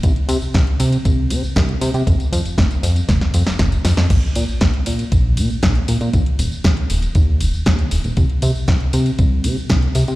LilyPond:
<<
  \new Staff \with { instrumentName = "Analog synth bass" } { \clef bass \time 4/4 \key c \phrygian \tempo 4 = 118 c,16 r16 c16 c,16 c,16 r16 c16 r16 c,8 c16 c,16 c,16 r16 c16 c16 | f,,16 r16 f,16 f,,16 f,,16 r16 f,16 r16 f,,16 f,16 f,16 f,,16 f,,16 r16 f,16 f,16 | bes,,16 r16 bes,16 bes,,16 bes,,16 r16 bes,16 r16 bes,,8 bes,16 bes,,16 bes,,16 r16 bes,16 bes,16 | ees,16 r16 ees,,16 ees,16 ees,16 r16 ees,,16 r16 ees,8 ees,,16 ees,16 ees,16 r16 ees,,16 ees,,16 |
c,16 r16 c16 c,16 c,16 r16 c16 r16 c,8 c16 c,16 c,16 r16 c16 c16 | }
  \new DrumStaff \with { instrumentName = "Drums" } \drummode { \time 4/4 <hh bd tamb>16 hh16 <hho cymr tamb>16 tamb16 <hh bd sn tamb>16 hh16 <hho cymr tamb>16 <hh tamb>16 <hh bd tamb>8 <hho cymr tamb>16 tamb16 <hh bd sn tamb>16 hh16 <hho cymr tamb>16 <hh tamb>16 | <hh bd tamb>16 <hh tamb>16 <hho cymr tamb>16 <hh tamb>16 <hh bd sn tamb>16 <hh tamb>16 <hho cymr tamb>16 <hh tamb>16 <hh bd sn tamb>16 <hh sn>16 <hho cymr tamb>16 <hh sn tamb>16 <hh bd sn tamb>16 <hh tamb>16 <hho cymr sn tamb>16 <hh sn tamb>16 | <cymc hh bd tamb>16 hh16 <hho cymr tamb>16 tamb16 <hh bd sn tamb>16 hh16 <hho cymr tamb>16 <hh tamb>16 <hh bd tamb>8 <hho cymr tamb>16 tamb16 <hh bd sn tamb>16 hh16 <hho cymr tamb>16 <hh tamb>16 | <hh bd tamb>16 hh16 <hho cymr tamb>16 tamb16 <hh bd sn tamb>16 hh16 <hho cymr tamb>16 <hh tamb>16 <hh bd tamb>8 <hho cymr tamb>16 tamb16 <hh bd sn tamb>16 hh16 <hho cymr tamb>16 <hh tamb>16 |
<hh bd tamb>16 hh16 <hho cymr tamb>16 tamb16 <hh bd sn tamb>16 hh16 <hho cymr tamb>16 <hh tamb>16 <hh bd tamb>8 <hho cymr tamb>16 tamb16 <hh bd sn tamb>16 hh16 <hho cymr tamb>16 <hh tamb>16 | }
>>